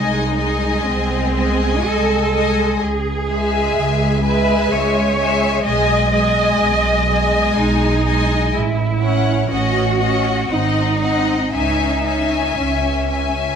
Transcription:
0.00 0.74 C2 medium
0.00 0.37 G#3 soft
0.00 0.83 D#4 medium
0.00 0.36 D#5 soft
0.00 0.38 G#5 soft
0.38 1.33 G#3 soft
0.38 1.33 D#5 soft
0.38 1.34 G#5 soft
0.84 1.74 C2 medium
0.84 1.86 C4 medium
1.35 2.33 G#3 soft
1.35 2.32 D#5 soft
1.35 2.32 G#5 medium
1.85 2.70 C2 medium
1.85 2.81 A4 medium
2.33 2.80 G#3 soft
2.33 2.80 D#5 soft
2.33 2.80 G#5 soft
2.81 3.65 C#2 medium
2.81 4.24 G#4 medium
3.29 4.21 G#3 medium
3.29 4.23 E5 medium
3.29 4.22 G#5 medium
3.77 4.60 C#2 medium
4.23 5.16 G#3 medium
4.23 4.71 B4 medium
4.23 5.16 E5 medium
4.23 5.16 G#5 soft
4.71 5.54 C#2 medium
4.71 5.65 C#5 medium
5.17 5.63 G#3 medium
5.17 5.64 E5 medium
5.17 5.63 G#5 soft
5.64 6.49 B1 medium
5.64 6.11 G#3 medium
5.64 7.54 D#5 medium
5.64 6.12 D#5 medium
5.64 6.11 G#5 medium
6.13 7.07 G#3 medium
6.13 7.08 D#5 medium
6.13 7.08 G#5 medium
6.60 7.46 B1 medium
7.09 8.05 G#3 medium
7.09 8.05 D#5 medium
7.09 8.05 G#5 medium
7.57 8.43 B1 medium
7.57 8.55 D#4 medium
8.06 8.54 G#3 soft
8.06 8.54 D#5 medium
8.06 8.54 G#5 medium
8.54 9.40 A1 medium
8.54 9.50 E4 medium
9.03 9.51 C#4 medium
9.03 9.50 C#5 soft
9.03 9.50 F#5 medium
9.50 10.38 A1 medium
9.50 10.00 C#4 medium
9.50 10.49 F#4 medium
9.50 9.98 D#5 soft
9.50 9.98 F#5 soft
9.99 10.50 C#4 medium
9.99 10.49 D#5 soft
9.99 10.47 F#5 soft
10.48 11.41 G#1 medium
10.48 11.01 C4 soft
10.48 11.53 D#4 medium
10.48 11.01 D#5 soft
10.48 10.99 F#5 soft
11.01 11.54 C4 soft
11.01 11.54 D#5 soft
11.01 11.53 F#5 soft
11.53 12.47 C#2 medium
11.53 12.06 C#4 soft
11.53 12.58 D#4 medium
11.53 12.06 E5 soft
11.53 12.05 G#5 soft
12.06 13.10 C#4 soft
12.06 13.10 E5 soft
12.06 13.09 G#5 soft
12.59 13.52 C#2 medium
12.59 13.55 C#4 medium
13.10 13.55 C#4 soft
13.10 13.55 E5 soft
13.10 13.55 G#5 soft

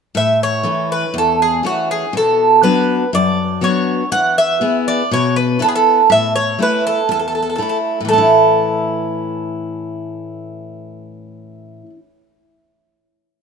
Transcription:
0.15 0.63 A2 medium
0.15 0.39 E5 medium
0.43 0.92 C#5 medium
0.63 1.04 E3 soft
0.63 1.04 A3 soft
0.63 1.05 C#4 soft
0.92 1.14 B4 medium
1.14 1.62 E2 medium
1.18 1.42 A4 medium
1.42 1.64 G#4 medium
1.63 2.04 E3 soft
1.63 2.04 A3 soft
1.63 2.04 C#4 soft
1.63 1.91 F#4 medium
1.91 2.13 G#4 medium
2.13 2.62 B2 medium
2.17 2.62 A4 medium
2.63 3.03 F#3 soft
2.63 3.03 B3 soft
2.63 3.03 D4 soft
2.63 3.10 B4 medium
3.13 3.61 F#2 medium
3.13 3.60 D5 medium
3.61 4.02 F#3 soft
3.61 4.02 B3 soft
3.61 4.02 D4 soft
3.61 4.10 C#5 medium
4.12 4.60 E3 medium
4.12 4.35 F#5 loud
4.38 4.87 E5 loud
4.61 5.01 B3 soft
4.61 5.02 E4 soft
4.61 5.01 G#4 soft
4.88 5.11 D5 medium
5.11 5.60 B2 medium
5.11 5.36 C#5 medium
5.36 5.60 B4 medium
5.59 6.00 B3 soft
5.59 6.00 E4 soft
5.59 5.68 A4 medium
5.59 6.00 B4 soft
5.68 5.75 G#4 medium
5.75 6.12 A4 medium
6.10 6.58 A2 medium
6.10 6.35 E5 medium
6.36 6.59 C#5 medium
6.59 6.99 A3 soft
6.59 6.99 C#4 soft
6.59 6.99 E4 soft
6.59 6.86 B4 medium
6.87 7.09 A4 medium
7.09 7.58 E2 medium
7.09 7.18 A4 medium
7.19 7.25 A4 soft
7.28 7.33 A4 soft
7.35 7.41 A4 soft
7.42 7.48 A4 soft
7.50 7.54 A4 soft
7.56 7.99 A3 soft
7.56 7.99 C#4 soft
7.56 7.99 E4 soft
7.56 7.61 A4 soft
7.62 7.68 A4 soft
7.69 7.76 A4 soft
8.00 11.81 A2 medium
8.05 11.86 E3 soft
8.05 11.90 A3 soft
8.05 11.90 A4 medium
8.13 11.94 C#4 soft
8.18 11.99 E4 medium

